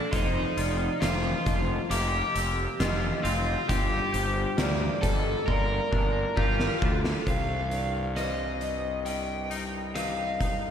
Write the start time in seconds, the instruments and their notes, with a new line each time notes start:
Already playing: clean electric guitar D#3 G3 A#3 D4, pedal steel guitar A#3, overdriven electric guitar D4, vibraphone A4
0.11 fingered electric bass F1, clean electric guitar F2, overdriven electric guitar D#4, vibraphone C5, pedal steel guitar F5 C6, kick, closed hi-hat
0.57 fingered electric bass F1, clean electric guitar F4, vibraphone D5, closed hi-hat
1.00 fingered electric bass F1, clean electric guitar A#3, overdriven electric guitar F4, vibraphone C5, snare, closed hi-hat
1.46 fingered electric bass F1, clean electric guitar F3, vibraphone D#5, kick, closed hi-hat
1.90 fingered electric bass F1, clean electric guitar A#3, overdriven electric guitar G4, pedal steel guitar D6, closed hi-hat
2.34 fingered electric bass F1, clean electric guitar C4, closed hi-hat
2.79 fingered electric bass F1, clean electric guitar F4, vibraphone D#5, snare, closed hi-hat
3.23 fingered electric bass F1, clean electric guitar C4, overdriven electric guitar F4, closed hi-hat
3.68 fingered electric bass G1, clean electric guitar G2, pedal steel guitar F4 G5, overdriven electric guitar G4, kick, closed hi-hat
4.12 fingered electric bass G1, clean electric guitar G4, vibraphone C5, closed hi-hat
4.57 fingered electric bass D2, clean electric guitar A#3, vibraphone D5, snare, closed hi-hat
5.01 fingered electric bass G1, clean electric guitar G3, overdriven electric guitar A4, vibraphone D#5, kick, closed hi-hat
5.46 fingered electric bass G1, clean electric guitar A#3, overdriven electric guitar A#4, vibraphone D5, pedal steel guitar C6, kick
5.91 fingered electric bass G1, clean electric guitar D4, kick
6.36 fingered electric bass G1, overdriven electric guitar F4, clean electric guitar G4, vibraphone A#4, kick
6.60 snare
6.82 fingered electric bass D2, clean electric guitar D4, vibraphone A4, kick
7.04 snare
7.27 clean electric guitar C2, fingered electric bass C2, vibraphone C5, overdriven electric guitar F5, kick, closed hi-hat
7.71 clean electric guitar G2, vibraphone D5, closed hi-hat
8.16 clean electric guitar C3, vibraphone C5, overdriven electric guitar D#5, cross-stick, closed hi-hat
8.61 clean electric guitar G2, vibraphone D#5, closed hi-hat
9.06 clean electric guitar G3, overdriven electric guitar G5, closed hi-hat
9.50 clean electric guitar D#4, closed hi-hat
9.95 clean electric guitar C3, vibraphone D#5, overdriven electric guitar F5, cross-stick, closed hi-hat
10.41 clean electric guitar D#4, kick, closed hi-hat